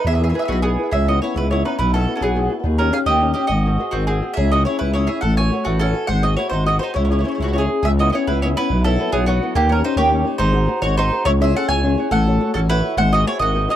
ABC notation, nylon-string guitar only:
X:1
M:6/8
L:1/8
Q:3/8=140
K:E
V:1 name="Nylon-string guitar"
E, [EGB] [EGB] B,, [EGB] [EGB] | [K:C#m] C, [B,CE] [B,CE] G, [B,CE] [B,CE] | B,, [B,EF] [B,EF] F, [B,EF] [B,EF] | D, [CD=G] [CDG] ^A, [CDG] [CDG] |
G, [FG^B] [FGB] D, [FGB] [FGB] | C, [CEG] [CEG] G, [CEG] [CEG] | A, [FAc] [FAc] E, [FAc] [FAc] | G, [FG^B] [FGB] D, [FGB] [FGB] |
C, [CEG] [CEG] G, [CEG] [CEG] | C, [B,CE] [B,CE] G, [B,CE] [B,CE] | B,, [F,B,E] [F,B,E] F, [F,B,E] [F,B,E] | D, [CD=G] [CDG] ^A, [CDG] [CDG] |
G, [FG^B] [FGB] D, [FGB] [FGB] | C, [CEG] [CEG] G, [CEG] [CEG] | A, [FAc] [FAc] E, [FAc] [FAc] | G, [FG^B] [FGB] D, [FGB] [FGB] |]